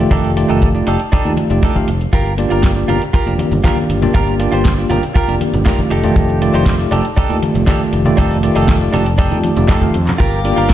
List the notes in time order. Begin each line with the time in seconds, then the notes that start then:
0.00 D#3 A3 F4 G4 D5
0.11 F1 D4 D#4 G4 A4, kick, closed hi-hat
0.24 closed hi-hat
0.36 D#3 A3 F4 G4 D5, closed hi-hat
0.49 F1 D4 D#4 G4 A4, closed hi-hat
0.62 kick, closed hi-hat
0.74 A3 D#4 F4 G4 D5, closed hi-hat
0.87 F1 D4 D#4 G4 A4, closed hi-hat
1.00 closed hi-hat
1.12 D4 D#4 G4 A4, kick, closed hi-hat
1.25 D#2 A3 D#4 F4 G4 D5, closed hi-hat
1.37 closed hi-hat, high conga
1.50 F1 A3 D#4 F4 G4 D5, muted clean electric guitar stroke, closed hi-hat
1.63 D4 D#4 G4 A4, kick, closed hi-hat
1.75 A3 D#4 F4 G4 F5, kick, closed hi-hat, high conga
1.88 F1, muted clean electric guitar stroke, closed hi-hat
2.01 closed hi-hat
2.13 G1 F4 G4 A#4, kick, closed hi-hat
2.26 closed hi-hat
2.38 A#3 D4 F4 G4 D5, closed hi-hat
2.50 G1 F4 G4 A#4, closed hi-hat
2.63 kick, snare, closed hi-hat
2.76 A#3 D4 F4 G4 D5, closed hi-hat
2.88 G1 F4 G4 A#4, closed hi-hat, low conga
3.02 closed hi-hat
3.13 F4 G4 A#4, muted fingered electric bass stroke, kick, closed hi-hat
3.26 F1 A#3 D4 F4 G4 D5, closed hi-hat
3.39 closed hi-hat, high conga
3.51 G1, muted clean electric guitar stroke, closed hi-hat, low conga
3.64 A#3 D4 F4 G4 A#4 D5, kick, snare, closed hi-hat
3.76 closed hi-hat, high conga
3.89 G1, muted clean electric guitar stroke, closed hi-hat
4.02 A#3 D4 F4 G4 D5, closed hi-hat, low conga
4.14 G1 F4 G4 A#4, kick, closed hi-hat
4.27 closed hi-hat
4.39 A#3 D4 F4 G4 D5, closed hi-hat
4.52 G1 F4 G4 C5, closed hi-hat
4.65 kick, snare, closed hi-hat
4.78 A#3 D4 F4 G4 D5, closed hi-hat
4.90 G1 F4 G4 A#4, closed hi-hat, low conga
5.03 closed hi-hat
5.14 F4 G4 A#4, kick, closed hi-hat
5.28 F1 A#3 D4 F4 G4 D5, closed hi-hat
5.41 closed hi-hat, high conga
5.53 G1, muted clean electric guitar stroke, closed hi-hat, low conga
5.65 A3 D#4 F4 G4 A#4 D5, kick, snare, closed hi-hat
5.79 kick, closed hi-hat, high conga
5.90 F1 D4 D#4 G4 A4, closed hi-hat
6.03 D#3 A3 F4 G4 D5, closed hi-hat, low conga
6.16 F1, kick, closed hi-hat
6.29 closed hi-hat
6.41 D#3 A3 F4 G4 D5, closed hi-hat
6.54 F1 D4 D#4 G4 C5, closed hi-hat
6.66 kick, snare, closed hi-hat
6.78 A3 D#4 F4 G4 D5, closed hi-hat
6.91 F1 D4 D#4 G4 A4, closed hi-hat, low conga
7.05 closed hi-hat
7.16 D4 D#4 G4 A4, muted fingered electric bass stroke, kick, closed hi-hat
7.29 D#2 D#3 A3 F4 G4 D5, closed hi-hat
7.43 closed hi-hat, high conga
7.54 F1, muted clean electric guitar stroke, closed hi-hat, low conga
7.67 D#3 A3 D4 D#4 F4 G4 A4 D5, kick, snare, closed hi-hat
7.80 closed hi-hat, high conga
7.92 F1, muted clean electric guitar stroke, closed hi-hat
8.05 D#3 A3 F4 G4 D5, closed hi-hat, low conga
8.17 F1 D4 D#4 G4 A4, kick, closed hi-hat
8.31 closed hi-hat
8.43 D#3 A3 F4 G4 D5, closed hi-hat
8.55 F1 D4 D#4 G4 A4, closed hi-hat
8.68 kick, snare, closed hi-hat
8.81 A3 D#4 F4 G4 D5, closed hi-hat
8.93 F1 D4 D#4 G4 A4, closed hi-hat, high conga, low conga
9.06 closed hi-hat
9.18 D4 D#4 G4 A4, kick, closed hi-hat
9.31 F2 A3 D#4 F4 G4 D5, closed hi-hat
9.43 closed hi-hat, high conga
9.56 F1 A3 D#4 F4 G4 D5, muted clean electric guitar stroke, closed hi-hat, low conga
9.68 D4 D#4 G4 A4, kick, snare, clap, closed hi-hat
9.81 A3 D#4 F4 G4 F5, kick, closed hi-hat, high conga
9.93 F2, muted clean electric guitar stroke, closed hi-hat
10.07 clap, closed hi-hat, low conga
10.18 G1 F4 G4 A#4 F5 G5 D6, kick, closed hi-hat
10.32 closed hi-hat
10.44 A#3 D4 F4 G4 D5, open hi-hat
10.56 G1 F4 G4 A#4, closed hi-hat
10.70 kick, snare, closed hi-hat